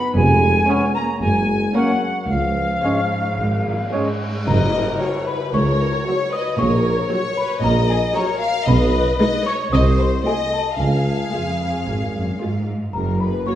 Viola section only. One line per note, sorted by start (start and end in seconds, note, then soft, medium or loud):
0.69 1.08 B3 medium
0.69 1.08 C#4 medium
1.75 2.15 A#3 medium
1.75 2.15 C#4 medium
2.84 3.24 C#4 medium
3.93 4.33 C#4 medium
5.01 5.40 F#3 medium
5.01 5.40 F#4 medium
6.06 6.45 F#3 medium
6.06 6.45 F#4 medium
7.12 7.51 F#3 medium
7.12 7.51 F#4 medium
8.15 8.54 F#3 medium
8.15 8.54 F#4 medium
9.20 9.59 G#3 medium
9.20 9.59 D#4 medium
10.26 10.66 A3 medium
10.26 10.66 F#4 medium
11.33 11.73 G#3 soft
11.33 11.73 F4 soft
12.40 12.80 G#3 medium
12.40 12.80 F4 soft
13.47 13.55 A#3 soft
13.47 13.55 F#4 soft